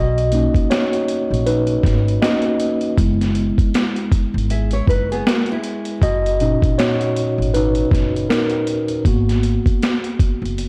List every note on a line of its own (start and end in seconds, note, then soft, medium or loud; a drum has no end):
0.00 0.44 B1 loud
0.00 0.67 F#4 medium
0.00 0.72 D#5 loud
0.18 closed hi-hat medium
0.32 1.42 A#3 medium
0.32 1.42 C#4 soft
0.32 1.43 D#4 medium
0.32 closed hi-hat medium
0.54 kick medium
0.54 closed hi-hat soft
0.70 1.42 F#4 medium
0.70 1.48 C#5 medium
0.70 snare loud
0.70 closed hi-hat medium
0.93 closed hi-hat soft
1.08 closed hi-hat medium
1.30 1.75 A#1 medium
1.30 closed hi-hat soft
1.46 2.19 D#4 medium
1.46 2.18 B4 medium
1.46 closed hi-hat medium
1.67 closed hi-hat medium
1.83 2.15 G#1 loud
1.83 kick loud
1.83 snare soft
1.83 closed hi-hat medium
2.08 closed hi-hat soft
2.22 2.56 A#3 soft
2.22 2.56 C#4 soft
2.22 2.57 D#4 soft
2.22 2.79 F#4 medium
2.22 2.78 D#5 medium
2.22 snare loud
2.22 closed hi-hat medium
2.42 closed hi-hat soft
2.60 closed hi-hat medium
2.81 closed hi-hat soft
2.97 3.48 F#1 loud
2.97 5.97 G#3 medium
2.97 5.98 B3 soft
2.97 5.98 E4 medium
2.97 kick loud
2.97 closed hi-hat medium
3.21 snare soft
3.21 closed hi-hat medium
3.35 closed hi-hat medium
3.58 kick medium
3.58 closed hi-hat soft
3.74 snare loud
3.74 closed hi-hat medium
3.96 closed hi-hat soft
4.12 kick loud
4.12 closed hi-hat medium
4.34 4.79 G#1 medium
4.38 closed hi-hat soft
4.50 4.72 G#4 medium
4.50 4.72 E5 medium
4.50 closed hi-hat medium
4.71 4.87 E4 medium
4.71 4.87 C#5 medium
4.71 closed hi-hat medium
4.87 5.19 F#1 medium
4.87 5.10 D#4 medium
4.87 5.10 B4 medium
4.87 kick loud
4.87 closed hi-hat medium
5.12 5.26 B3 medium
5.12 5.25 G#4 medium
5.12 closed hi-hat soft
5.27 5.48 A#3 medium
5.27 5.48 F#4 medium
5.27 snare loud
5.27 closed hi-hat medium
5.46 closed hi-hat soft
5.52 6.01 G#3 medium
5.52 6.00 E4 medium
5.64 closed hi-hat medium
5.85 closed hi-hat medium
6.02 6.52 F#1 medium
6.02 6.74 F#4 medium
6.02 6.80 D#5 loud
6.02 kick loud
6.02 closed hi-hat medium
6.26 closed hi-hat medium
6.40 9.02 A#2 soft
6.40 9.02 C#4 soft
6.40 7.55 D#4 medium
6.40 closed hi-hat medium
6.62 kick medium
6.62 closed hi-hat soft
6.78 7.50 F#4 medium
6.78 7.56 C#5 medium
6.78 snare loud
6.78 closed hi-hat medium
7.01 closed hi-hat soft
7.17 closed hi-hat medium
7.38 7.83 G#1 medium
7.42 closed hi-hat soft
7.54 8.27 D#4 medium
7.54 8.26 B4 medium
7.54 closed hi-hat medium
7.75 closed hi-hat soft
7.91 8.23 F#1 medium
7.91 kick loud
7.91 snare soft
7.91 closed hi-hat medium
8.16 closed hi-hat soft
8.29 8.87 D#4 medium
8.29 8.86 A#4 medium
8.29 snare loud
8.29 closed hi-hat medium
8.50 closed hi-hat soft
8.67 closed hi-hat medium
8.88 closed hi-hat medium
9.05 9.56 G#1 medium
9.05 10.16 A#3 medium
9.05 10.16 B3 medium
9.05 10.16 F#4 medium
9.05 kick loud
9.05 closed hi-hat medium
9.29 snare soft
9.29 closed hi-hat medium
9.43 closed hi-hat medium
9.66 kick medium
9.66 closed hi-hat soft
9.82 snare loud
9.82 closed hi-hat medium
10.04 closed hi-hat soft
10.19 kick medium
10.19 closed hi-hat medium
10.42 10.69 F#1 medium
10.42 closed hi-hat soft
10.58 closed hi-hat medium